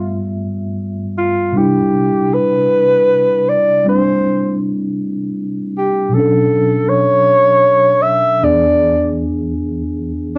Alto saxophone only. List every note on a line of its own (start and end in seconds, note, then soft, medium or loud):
0.00 0.40 F4 medium
1.18 1.58 F4 medium
1.57 2.35 G4 medium
2.34 3.51 B4 loud
3.49 3.86 D5 medium
3.89 4.58 C5 medium
5.78 6.16 G4 medium
6.14 6.91 A4 medium
6.89 8.04 C#5 loud
8.02 8.45 E5 medium
8.44 9.18 D5 medium